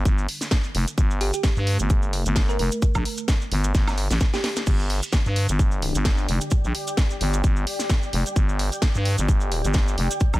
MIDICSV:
0, 0, Header, 1, 6, 480
1, 0, Start_track
1, 0, Tempo, 461538
1, 1016, Time_signature, 4, 2, 24, 8
1, 10815, End_track
2, 0, Start_track
2, 0, Title_t, "Ambient pad"
2, 0, Program_c, 0, 92
2, 4856, Note_on_c, 0, 67, 78
2, 4964, Note_on_c, 0, 74, 96
2, 5167, Note_on_c, 0, 79, 85
2, 10815, Note_off_c, 0, 67, 0
2, 10815, Note_off_c, 0, 74, 0
2, 10815, Note_off_c, 0, 79, 0
2, 10815, End_track
3, 0, Start_track
3, 0, Title_t, "Synth pluck"
3, 0, Program_c, 1, 84
3, 1256, Note_on_c, 1, 67, 92
3, 1342, Note_off_c, 1, 67, 0
3, 1389, Note_on_c, 1, 67, 78
3, 1458, Note_off_c, 1, 67, 0
3, 2590, Note_on_c, 1, 70, 93
3, 2658, Note_off_c, 1, 70, 0
3, 2696, Note_on_c, 1, 70, 75
3, 2782, Note_off_c, 1, 70, 0
3, 4510, Note_on_c, 1, 67, 90
3, 4578, Note_off_c, 1, 67, 0
3, 4616, Note_on_c, 1, 67, 77
3, 4702, Note_off_c, 1, 67, 0
3, 10815, End_track
4, 0, Start_track
4, 0, Title_t, "Analog synth pad"
4, 0, Program_c, 2, 89
4, 0, Note_on_c, 2, 50, 85
4, 0, Note_on_c, 2, 55, 75
4, 0, Note_on_c, 2, 62, 91
4, 1005, Note_off_c, 2, 62, 0
4, 1017, Note_on_c, 2, 57, 94
4, 4815, Note_off_c, 2, 50, 0
4, 4815, Note_off_c, 2, 55, 0
4, 4845, Note_off_c, 2, 57, 0
4, 4856, Note_on_c, 2, 50, 89
4, 4856, Note_on_c, 2, 55, 80
4, 4856, Note_on_c, 2, 62, 95
4, 8684, Note_off_c, 2, 62, 0
4, 8696, Note_on_c, 2, 67, 94
4, 10815, Note_off_c, 2, 50, 0
4, 10815, Note_off_c, 2, 55, 0
4, 10815, Note_off_c, 2, 67, 0
4, 10815, End_track
5, 0, Start_track
5, 0, Title_t, "FM bass"
5, 0, Program_c, 3, 39
5, 56, Note_on_c, 3, 31, 92
5, 279, Note_off_c, 3, 31, 0
5, 777, Note_on_c, 3, 29, 95
5, 889, Note_off_c, 3, 29, 0
5, 1016, Note_on_c, 3, 31, 95
5, 1369, Note_off_c, 3, 31, 0
5, 1630, Note_on_c, 3, 43, 101
5, 1848, Note_off_c, 3, 43, 0
5, 1870, Note_on_c, 3, 31, 94
5, 2329, Note_off_c, 3, 31, 0
5, 2350, Note_on_c, 3, 31, 97
5, 2679, Note_off_c, 3, 31, 0
5, 2696, Note_on_c, 3, 29, 90
5, 2809, Note_off_c, 3, 29, 0
5, 3069, Note_on_c, 3, 34, 97
5, 3159, Note_off_c, 3, 34, 0
5, 3656, Note_on_c, 3, 31, 96
5, 3879, Note_off_c, 3, 31, 0
5, 3896, Note_on_c, 3, 31, 92
5, 4249, Note_off_c, 3, 31, 0
5, 4270, Note_on_c, 3, 33, 98
5, 4360, Note_off_c, 3, 33, 0
5, 4856, Note_on_c, 3, 31, 94
5, 5208, Note_off_c, 3, 31, 0
5, 5470, Note_on_c, 3, 43, 94
5, 5689, Note_off_c, 3, 43, 0
5, 5710, Note_on_c, 3, 31, 94
5, 6169, Note_off_c, 3, 31, 0
5, 6190, Note_on_c, 3, 31, 99
5, 6520, Note_off_c, 3, 31, 0
5, 6537, Note_on_c, 3, 29, 97
5, 6649, Note_off_c, 3, 29, 0
5, 6910, Note_on_c, 3, 34, 94
5, 6999, Note_off_c, 3, 34, 0
5, 7496, Note_on_c, 3, 31, 95
5, 7719, Note_off_c, 3, 31, 0
5, 7736, Note_on_c, 3, 31, 98
5, 7959, Note_off_c, 3, 31, 0
5, 8456, Note_on_c, 3, 29, 96
5, 8569, Note_off_c, 3, 29, 0
5, 8696, Note_on_c, 3, 31, 98
5, 9049, Note_off_c, 3, 31, 0
5, 9311, Note_on_c, 3, 43, 98
5, 9529, Note_off_c, 3, 43, 0
5, 9550, Note_on_c, 3, 31, 94
5, 10009, Note_off_c, 3, 31, 0
5, 10030, Note_on_c, 3, 31, 103
5, 10359, Note_off_c, 3, 31, 0
5, 10376, Note_on_c, 3, 29, 98
5, 10489, Note_off_c, 3, 29, 0
5, 10750, Note_on_c, 3, 34, 98
5, 10815, Note_off_c, 3, 34, 0
5, 10815, End_track
6, 0, Start_track
6, 0, Title_t, "Drums"
6, 56, Note_on_c, 9, 36, 119
6, 57, Note_on_c, 9, 42, 68
6, 62, Note_on_c, 9, 70, 61
6, 160, Note_off_c, 9, 36, 0
6, 161, Note_off_c, 9, 42, 0
6, 166, Note_off_c, 9, 70, 0
6, 190, Note_on_c, 9, 70, 37
6, 294, Note_off_c, 9, 70, 0
6, 297, Note_on_c, 9, 46, 104
6, 401, Note_off_c, 9, 46, 0
6, 425, Note_on_c, 9, 38, 35
6, 431, Note_on_c, 9, 46, 56
6, 435, Note_on_c, 9, 70, 79
6, 529, Note_off_c, 9, 38, 0
6, 532, Note_on_c, 9, 38, 118
6, 535, Note_off_c, 9, 46, 0
6, 536, Note_on_c, 9, 36, 112
6, 537, Note_on_c, 9, 42, 69
6, 539, Note_off_c, 9, 70, 0
6, 540, Note_on_c, 9, 70, 67
6, 636, Note_off_c, 9, 38, 0
6, 640, Note_off_c, 9, 36, 0
6, 641, Note_off_c, 9, 42, 0
6, 644, Note_off_c, 9, 70, 0
6, 664, Note_on_c, 9, 70, 36
6, 768, Note_off_c, 9, 70, 0
6, 777, Note_on_c, 9, 46, 101
6, 881, Note_off_c, 9, 46, 0
6, 911, Note_on_c, 9, 42, 65
6, 914, Note_on_c, 9, 70, 72
6, 1015, Note_off_c, 9, 42, 0
6, 1016, Note_on_c, 9, 36, 109
6, 1017, Note_on_c, 9, 42, 69
6, 1018, Note_off_c, 9, 70, 0
6, 1022, Note_on_c, 9, 70, 62
6, 1120, Note_off_c, 9, 36, 0
6, 1121, Note_off_c, 9, 42, 0
6, 1126, Note_off_c, 9, 70, 0
6, 1151, Note_on_c, 9, 70, 41
6, 1255, Note_off_c, 9, 70, 0
6, 1257, Note_on_c, 9, 46, 104
6, 1361, Note_off_c, 9, 46, 0
6, 1389, Note_on_c, 9, 70, 76
6, 1391, Note_on_c, 9, 42, 57
6, 1492, Note_on_c, 9, 38, 119
6, 1493, Note_off_c, 9, 70, 0
6, 1495, Note_off_c, 9, 42, 0
6, 1496, Note_on_c, 9, 36, 112
6, 1497, Note_on_c, 9, 42, 67
6, 1498, Note_on_c, 9, 70, 65
6, 1596, Note_off_c, 9, 38, 0
6, 1600, Note_off_c, 9, 36, 0
6, 1601, Note_off_c, 9, 42, 0
6, 1602, Note_off_c, 9, 70, 0
6, 1628, Note_on_c, 9, 70, 39
6, 1732, Note_off_c, 9, 70, 0
6, 1736, Note_on_c, 9, 46, 107
6, 1840, Note_off_c, 9, 46, 0
6, 1866, Note_on_c, 9, 70, 81
6, 1870, Note_on_c, 9, 42, 56
6, 1970, Note_off_c, 9, 70, 0
6, 1974, Note_off_c, 9, 42, 0
6, 1974, Note_on_c, 9, 70, 62
6, 1976, Note_on_c, 9, 36, 114
6, 1976, Note_on_c, 9, 42, 67
6, 2078, Note_off_c, 9, 70, 0
6, 2080, Note_off_c, 9, 36, 0
6, 2080, Note_off_c, 9, 42, 0
6, 2105, Note_on_c, 9, 70, 36
6, 2209, Note_off_c, 9, 70, 0
6, 2216, Note_on_c, 9, 46, 103
6, 2320, Note_off_c, 9, 46, 0
6, 2350, Note_on_c, 9, 42, 54
6, 2350, Note_on_c, 9, 70, 80
6, 2451, Note_on_c, 9, 38, 122
6, 2454, Note_off_c, 9, 42, 0
6, 2454, Note_off_c, 9, 70, 0
6, 2454, Note_on_c, 9, 70, 65
6, 2456, Note_on_c, 9, 36, 116
6, 2456, Note_on_c, 9, 42, 71
6, 2555, Note_off_c, 9, 38, 0
6, 2558, Note_off_c, 9, 70, 0
6, 2560, Note_off_c, 9, 36, 0
6, 2560, Note_off_c, 9, 42, 0
6, 2594, Note_on_c, 9, 70, 38
6, 2696, Note_on_c, 9, 46, 96
6, 2698, Note_off_c, 9, 70, 0
6, 2800, Note_off_c, 9, 46, 0
6, 2826, Note_on_c, 9, 70, 73
6, 2830, Note_on_c, 9, 42, 66
6, 2930, Note_off_c, 9, 70, 0
6, 2934, Note_off_c, 9, 42, 0
6, 2934, Note_on_c, 9, 70, 68
6, 2936, Note_on_c, 9, 36, 115
6, 2937, Note_on_c, 9, 42, 72
6, 3038, Note_off_c, 9, 70, 0
6, 3040, Note_off_c, 9, 36, 0
6, 3041, Note_off_c, 9, 42, 0
6, 3063, Note_on_c, 9, 70, 41
6, 3070, Note_on_c, 9, 36, 60
6, 3070, Note_on_c, 9, 76, 91
6, 3167, Note_off_c, 9, 70, 0
6, 3174, Note_off_c, 9, 36, 0
6, 3174, Note_off_c, 9, 76, 0
6, 3176, Note_on_c, 9, 46, 109
6, 3280, Note_off_c, 9, 46, 0
6, 3301, Note_on_c, 9, 70, 77
6, 3310, Note_on_c, 9, 42, 55
6, 3405, Note_off_c, 9, 70, 0
6, 3411, Note_on_c, 9, 38, 121
6, 3414, Note_off_c, 9, 42, 0
6, 3416, Note_on_c, 9, 36, 112
6, 3417, Note_on_c, 9, 42, 69
6, 3417, Note_on_c, 9, 70, 68
6, 3515, Note_off_c, 9, 38, 0
6, 3520, Note_off_c, 9, 36, 0
6, 3521, Note_off_c, 9, 42, 0
6, 3521, Note_off_c, 9, 70, 0
6, 3552, Note_on_c, 9, 70, 37
6, 3656, Note_off_c, 9, 70, 0
6, 3656, Note_on_c, 9, 46, 110
6, 3760, Note_off_c, 9, 46, 0
6, 3786, Note_on_c, 9, 70, 82
6, 3790, Note_on_c, 9, 42, 56
6, 3890, Note_off_c, 9, 70, 0
6, 3894, Note_off_c, 9, 42, 0
6, 3896, Note_on_c, 9, 36, 124
6, 3896, Note_on_c, 9, 38, 64
6, 3896, Note_on_c, 9, 42, 74
6, 3896, Note_on_c, 9, 70, 65
6, 4000, Note_off_c, 9, 36, 0
6, 4000, Note_off_c, 9, 38, 0
6, 4000, Note_off_c, 9, 42, 0
6, 4000, Note_off_c, 9, 70, 0
6, 4030, Note_on_c, 9, 38, 57
6, 4030, Note_on_c, 9, 76, 86
6, 4036, Note_on_c, 9, 70, 40
6, 4134, Note_off_c, 9, 38, 0
6, 4134, Note_off_c, 9, 76, 0
6, 4136, Note_on_c, 9, 46, 104
6, 4140, Note_off_c, 9, 70, 0
6, 4240, Note_off_c, 9, 46, 0
6, 4270, Note_on_c, 9, 38, 67
6, 4270, Note_on_c, 9, 46, 59
6, 4274, Note_on_c, 9, 70, 73
6, 4373, Note_off_c, 9, 70, 0
6, 4373, Note_on_c, 9, 70, 67
6, 4374, Note_off_c, 9, 38, 0
6, 4374, Note_off_c, 9, 46, 0
6, 4376, Note_on_c, 9, 36, 115
6, 4376, Note_on_c, 9, 38, 86
6, 4376, Note_on_c, 9, 42, 71
6, 4477, Note_off_c, 9, 70, 0
6, 4480, Note_off_c, 9, 36, 0
6, 4480, Note_off_c, 9, 38, 0
6, 4480, Note_off_c, 9, 42, 0
6, 4509, Note_on_c, 9, 38, 77
6, 4514, Note_on_c, 9, 70, 38
6, 4613, Note_off_c, 9, 38, 0
6, 4616, Note_on_c, 9, 38, 102
6, 4616, Note_on_c, 9, 46, 104
6, 4618, Note_off_c, 9, 70, 0
6, 4720, Note_off_c, 9, 38, 0
6, 4720, Note_off_c, 9, 46, 0
6, 4749, Note_on_c, 9, 70, 70
6, 4750, Note_on_c, 9, 38, 89
6, 4750, Note_on_c, 9, 42, 68
6, 4853, Note_off_c, 9, 70, 0
6, 4854, Note_off_c, 9, 38, 0
6, 4854, Note_off_c, 9, 42, 0
6, 4854, Note_on_c, 9, 70, 67
6, 4856, Note_on_c, 9, 36, 119
6, 4856, Note_on_c, 9, 42, 72
6, 4856, Note_on_c, 9, 49, 111
6, 4958, Note_off_c, 9, 70, 0
6, 4960, Note_off_c, 9, 36, 0
6, 4960, Note_off_c, 9, 42, 0
6, 4960, Note_off_c, 9, 49, 0
6, 4989, Note_on_c, 9, 70, 36
6, 5093, Note_off_c, 9, 70, 0
6, 5096, Note_on_c, 9, 46, 109
6, 5200, Note_off_c, 9, 46, 0
6, 5229, Note_on_c, 9, 70, 86
6, 5230, Note_on_c, 9, 42, 59
6, 5330, Note_on_c, 9, 38, 127
6, 5332, Note_off_c, 9, 70, 0
6, 5332, Note_on_c, 9, 70, 64
6, 5334, Note_off_c, 9, 42, 0
6, 5336, Note_on_c, 9, 36, 116
6, 5336, Note_on_c, 9, 42, 70
6, 5434, Note_off_c, 9, 38, 0
6, 5436, Note_off_c, 9, 70, 0
6, 5440, Note_off_c, 9, 36, 0
6, 5440, Note_off_c, 9, 42, 0
6, 5468, Note_on_c, 9, 70, 42
6, 5572, Note_off_c, 9, 70, 0
6, 5576, Note_on_c, 9, 46, 116
6, 5680, Note_off_c, 9, 46, 0
6, 5708, Note_on_c, 9, 70, 92
6, 5710, Note_on_c, 9, 42, 57
6, 5812, Note_off_c, 9, 70, 0
6, 5814, Note_off_c, 9, 42, 0
6, 5816, Note_on_c, 9, 36, 122
6, 5816, Note_on_c, 9, 42, 68
6, 5821, Note_on_c, 9, 70, 69
6, 5920, Note_off_c, 9, 36, 0
6, 5920, Note_off_c, 9, 42, 0
6, 5925, Note_off_c, 9, 70, 0
6, 5943, Note_on_c, 9, 70, 35
6, 6047, Note_off_c, 9, 70, 0
6, 6057, Note_on_c, 9, 46, 111
6, 6161, Note_off_c, 9, 46, 0
6, 6189, Note_on_c, 9, 70, 79
6, 6190, Note_on_c, 9, 42, 54
6, 6291, Note_on_c, 9, 38, 124
6, 6293, Note_off_c, 9, 70, 0
6, 6294, Note_off_c, 9, 42, 0
6, 6296, Note_on_c, 9, 36, 120
6, 6297, Note_on_c, 9, 42, 70
6, 6297, Note_on_c, 9, 70, 64
6, 6395, Note_off_c, 9, 38, 0
6, 6400, Note_off_c, 9, 36, 0
6, 6401, Note_off_c, 9, 42, 0
6, 6401, Note_off_c, 9, 70, 0
6, 6426, Note_on_c, 9, 70, 41
6, 6530, Note_off_c, 9, 70, 0
6, 6537, Note_on_c, 9, 46, 106
6, 6641, Note_off_c, 9, 46, 0
6, 6668, Note_on_c, 9, 70, 82
6, 6670, Note_on_c, 9, 42, 65
6, 6767, Note_off_c, 9, 70, 0
6, 6767, Note_on_c, 9, 70, 72
6, 6774, Note_off_c, 9, 42, 0
6, 6776, Note_on_c, 9, 36, 119
6, 6777, Note_on_c, 9, 42, 69
6, 6871, Note_off_c, 9, 70, 0
6, 6880, Note_off_c, 9, 36, 0
6, 6881, Note_off_c, 9, 42, 0
6, 6911, Note_on_c, 9, 70, 41
6, 7015, Note_off_c, 9, 70, 0
6, 7017, Note_on_c, 9, 46, 115
6, 7121, Note_off_c, 9, 46, 0
6, 7150, Note_on_c, 9, 70, 80
6, 7151, Note_on_c, 9, 42, 55
6, 7252, Note_on_c, 9, 38, 123
6, 7254, Note_off_c, 9, 70, 0
6, 7255, Note_off_c, 9, 42, 0
6, 7256, Note_on_c, 9, 36, 119
6, 7257, Note_on_c, 9, 42, 67
6, 7259, Note_on_c, 9, 70, 69
6, 7356, Note_off_c, 9, 38, 0
6, 7360, Note_off_c, 9, 36, 0
6, 7361, Note_off_c, 9, 42, 0
6, 7363, Note_off_c, 9, 70, 0
6, 7388, Note_on_c, 9, 70, 42
6, 7492, Note_off_c, 9, 70, 0
6, 7497, Note_on_c, 9, 46, 117
6, 7601, Note_off_c, 9, 46, 0
6, 7626, Note_on_c, 9, 70, 86
6, 7631, Note_on_c, 9, 42, 53
6, 7730, Note_off_c, 9, 70, 0
6, 7735, Note_off_c, 9, 42, 0
6, 7736, Note_on_c, 9, 36, 125
6, 7737, Note_on_c, 9, 42, 70
6, 7737, Note_on_c, 9, 70, 68
6, 7840, Note_off_c, 9, 36, 0
6, 7841, Note_off_c, 9, 42, 0
6, 7841, Note_off_c, 9, 70, 0
6, 7865, Note_on_c, 9, 70, 38
6, 7969, Note_off_c, 9, 70, 0
6, 7976, Note_on_c, 9, 46, 116
6, 8080, Note_off_c, 9, 46, 0
6, 8105, Note_on_c, 9, 38, 37
6, 8109, Note_on_c, 9, 70, 86
6, 8110, Note_on_c, 9, 46, 65
6, 8209, Note_off_c, 9, 38, 0
6, 8211, Note_on_c, 9, 38, 127
6, 8213, Note_off_c, 9, 70, 0
6, 8214, Note_off_c, 9, 46, 0
6, 8216, Note_on_c, 9, 36, 127
6, 8216, Note_on_c, 9, 42, 72
6, 8216, Note_on_c, 9, 70, 70
6, 8315, Note_off_c, 9, 38, 0
6, 8320, Note_off_c, 9, 36, 0
6, 8320, Note_off_c, 9, 42, 0
6, 8320, Note_off_c, 9, 70, 0
6, 8349, Note_on_c, 9, 70, 42
6, 8453, Note_off_c, 9, 70, 0
6, 8456, Note_on_c, 9, 46, 109
6, 8560, Note_off_c, 9, 46, 0
6, 8590, Note_on_c, 9, 42, 65
6, 8596, Note_on_c, 9, 70, 74
6, 8694, Note_off_c, 9, 42, 0
6, 8696, Note_on_c, 9, 36, 123
6, 8696, Note_on_c, 9, 42, 65
6, 8697, Note_off_c, 9, 70, 0
6, 8697, Note_on_c, 9, 70, 70
6, 8800, Note_off_c, 9, 36, 0
6, 8800, Note_off_c, 9, 42, 0
6, 8801, Note_off_c, 9, 70, 0
6, 8828, Note_on_c, 9, 70, 42
6, 8932, Note_off_c, 9, 70, 0
6, 8937, Note_on_c, 9, 46, 110
6, 9041, Note_off_c, 9, 46, 0
6, 9070, Note_on_c, 9, 42, 53
6, 9077, Note_on_c, 9, 70, 88
6, 9171, Note_on_c, 9, 38, 121
6, 9174, Note_off_c, 9, 42, 0
6, 9176, Note_on_c, 9, 36, 123
6, 9177, Note_on_c, 9, 42, 64
6, 9180, Note_off_c, 9, 70, 0
6, 9180, Note_on_c, 9, 70, 71
6, 9275, Note_off_c, 9, 38, 0
6, 9280, Note_off_c, 9, 36, 0
6, 9281, Note_off_c, 9, 42, 0
6, 9284, Note_off_c, 9, 70, 0
6, 9307, Note_on_c, 9, 70, 45
6, 9411, Note_off_c, 9, 70, 0
6, 9416, Note_on_c, 9, 46, 116
6, 9520, Note_off_c, 9, 46, 0
6, 9550, Note_on_c, 9, 42, 51
6, 9550, Note_on_c, 9, 70, 83
6, 9654, Note_off_c, 9, 42, 0
6, 9654, Note_off_c, 9, 70, 0
6, 9656, Note_on_c, 9, 36, 127
6, 9657, Note_on_c, 9, 42, 67
6, 9661, Note_on_c, 9, 70, 69
6, 9760, Note_off_c, 9, 36, 0
6, 9761, Note_off_c, 9, 42, 0
6, 9765, Note_off_c, 9, 70, 0
6, 9780, Note_on_c, 9, 70, 38
6, 9884, Note_off_c, 9, 70, 0
6, 9897, Note_on_c, 9, 46, 112
6, 10001, Note_off_c, 9, 46, 0
6, 10031, Note_on_c, 9, 42, 51
6, 10034, Note_on_c, 9, 70, 90
6, 10126, Note_off_c, 9, 70, 0
6, 10126, Note_on_c, 9, 70, 75
6, 10131, Note_on_c, 9, 38, 126
6, 10135, Note_off_c, 9, 42, 0
6, 10136, Note_on_c, 9, 36, 127
6, 10137, Note_on_c, 9, 42, 68
6, 10230, Note_off_c, 9, 70, 0
6, 10235, Note_off_c, 9, 38, 0
6, 10240, Note_off_c, 9, 36, 0
6, 10241, Note_off_c, 9, 42, 0
6, 10275, Note_on_c, 9, 70, 41
6, 10377, Note_on_c, 9, 46, 111
6, 10379, Note_off_c, 9, 70, 0
6, 10481, Note_off_c, 9, 46, 0
6, 10511, Note_on_c, 9, 42, 62
6, 10514, Note_on_c, 9, 70, 89
6, 10609, Note_off_c, 9, 70, 0
6, 10609, Note_on_c, 9, 70, 69
6, 10615, Note_off_c, 9, 42, 0
6, 10616, Note_on_c, 9, 36, 119
6, 10617, Note_on_c, 9, 42, 65
6, 10713, Note_off_c, 9, 70, 0
6, 10720, Note_off_c, 9, 36, 0
6, 10721, Note_off_c, 9, 42, 0
6, 10750, Note_on_c, 9, 36, 66
6, 10750, Note_on_c, 9, 70, 44
6, 10750, Note_on_c, 9, 76, 81
6, 10815, Note_off_c, 9, 36, 0
6, 10815, Note_off_c, 9, 70, 0
6, 10815, Note_off_c, 9, 76, 0
6, 10815, End_track
0, 0, End_of_file